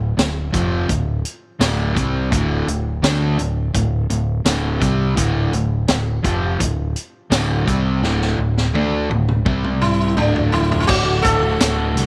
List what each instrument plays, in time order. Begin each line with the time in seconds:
Already playing: fingered electric bass D1, overdriven electric guitar D2 A2
0.17 fingered electric bass D1, overdriven electric guitar D2 A2, snare, closed hi-hat, tambourine
0.53 fingered electric bass F1, overdriven electric guitar F2 C3 F3, kick, closed hi-hat
0.88 fingered electric bass D1, overdriven electric guitar D2 A2, kick, closed hi-hat
1.25 closed hi-hat
1.59 fingered electric bass D1, overdriven electric guitar D2 A2 D3, snare, closed hi-hat, tambourine
1.95 fingered electric bass C2, overdriven electric guitar C3 G3 C4, kick, closed hi-hat
2.31 fingered electric bass D1, overdriven electric guitar D2 A2 D3, kick, closed hi-hat
2.67 fingered electric bass D1, overdriven electric guitar D2 A2, closed hi-hat
3.03 fingered electric bass D2, overdriven electric guitar D3 A3 D4, snare, closed hi-hat, tambourine
3.38 fingered electric bass D1, overdriven electric guitar D2 A2, closed hi-hat
3.74 fingered electric bass D1, overdriven electric guitar D2 A2, kick, closed hi-hat
4.10 fingered electric bass D1, overdriven electric guitar D2 A2, closed hi-hat
4.45 fingered electric bass D1, overdriven electric guitar D2 A2 D3, snare, closed hi-hat, tambourine
4.81 fingered electric bass C2, overdriven electric guitar C3 G3 C4, kick, closed hi-hat
5.15 fingered electric bass D1, overdriven electric guitar D2 A2 D3, kick, closed hi-hat
5.52 fingered electric bass D1, overdriven electric guitar D2 A2, closed hi-hat
5.88 fingered electric bass D1, overdriven electric guitar D2 A2, snare, closed hi-hat, tambourine
6.23 fingered electric bass F1, overdriven electric guitar F2 C3 F3, kick, closed hi-hat
6.59 fingered electric bass D1, overdriven electric guitar D2 A2, kick, closed hi-hat
6.96 closed hi-hat
7.30 fingered electric bass D1, overdriven electric guitar D2 A2 D3, snare, closed hi-hat, tambourine
7.67 fingered electric bass C2, overdriven electric guitar C3 G3 C4, kick, closed hi-hat
8.02 fingered electric bass D1, overdriven electric guitar D2 A2 D3, snare
8.21 snare
8.39 fingered electric bass D1, overdriven electric guitar D2 A2
8.58 snare
8.74 fingered electric bass D2, overdriven electric guitar D3 A3 D4, high tom
9.10 fingered electric bass D1, overdriven electric guitar D2 A2, high tom
9.28 mid tom
9.45 fingered electric bass C2, overdriven electric guitar C3 G3 C4, kick
9.64 mid tom
9.81 sitar E4, mid tom
10.17 fingered electric bass D1, overdriven electric guitar D2 A2 D3, sitar D4, mid tom
10.36 floor tom
10.52 sitar E4, floor tom
10.72 floor tom
10.80 sitar E4
10.87 fingered electric bass D1, overdriven electric guitar D2 A2 D3 A3 F#4, sitar F#4, kick, crash, cowbell
11.22 fingered electric bass D1, overdriven electric guitar A2 D3, sitar A4, kick, closed hi-hat
11.26 overdriven electric guitar A3 F#4
11.43 overdriven electric guitar D3 A3 F#4
11.60 fingered electric bass D1, overdriven electric guitar D2 A2 D3 A3 F#4, snare, closed hi-hat, tambourine, cowbell
11.96 fingered electric bass C2, closed hi-hat